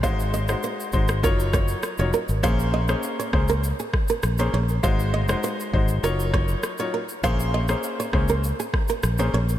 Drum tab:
SH |xxxxxxxxxxxxxxxx|xx-xxx-xxx-xxx-x|xx-xxx-xxx-xxx-x|xx-xxx-xxx-xxx-x|
SD |---r---r--r-r---|---r--r---r-r---|---r------r-r---|---r--r---r-r---|
BD |o-----o-o-o-----|o-----o---o-----|o-----o---o-----|o-----o---o-----|